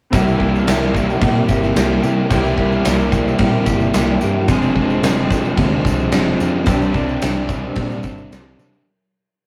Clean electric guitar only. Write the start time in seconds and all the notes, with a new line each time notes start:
0.11 C3 G3 A#3 E4
0.15 G4
0.38 A#3 E4 G4
0.65 G3 A#3 E4 G4
0.92 A#3 E4 G4
1.20 C3 G3 A#3 E4 G4
1.47 A#3 E4 G4
1.74 G3 A#3 E4 G4
2.02 A#3 E4 G4
2.29 C3 G3 A#3 E4
2.34 G4
2.57 A#3 E4 G4
2.85 G3 A#3 E4 G4
3.13 A#3 E4 G4
3.40 C3 G3 A#3 E4 G4
3.66 A#3 E4 G4
3.93 G3 A#3 E4 G4
4.21 A#3 E4 G4
4.48 F2 C3 F3 G#3 D4
4.77 F3 G#3 D4
5.02 C3 F3 G#3 D4
5.31 F3 G#3 D4
5.58 F2 C3 F3 G#3 D4
5.85 F3 G#3 D4
6.11 C3 F3 G#3 D4
6.38 F3 G#3 D4
6.65 C3 G3 C4 D4
6.93 C4 D4
6.97 G3
7.21 C3 G3 C4 D4
7.48 G3 C4 D4
7.75 C3 G3 C4 D4
8.02 G3 C4 D4
8.29 C3 G3 C4 D4
8.57 G3 C4 D4